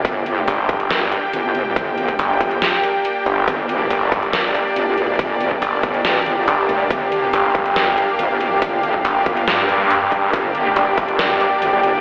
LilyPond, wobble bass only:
\new Staff \with { instrumentName = "Wobble bass" } { \clef bass \time 4/4 \key g \minor \tempo 4 = 140 g,,4 r2 g,,4 | g,,4 r8 g,,8 r2 | g,,4 r2 g,,4 | g,,4 r8 g,,8 a,,8 g,,8 r8 f,,8 |
g,,4 r2 g,,4 | g,,4 r8 g,,8 r2 | g,,4 r2 g,,4 | }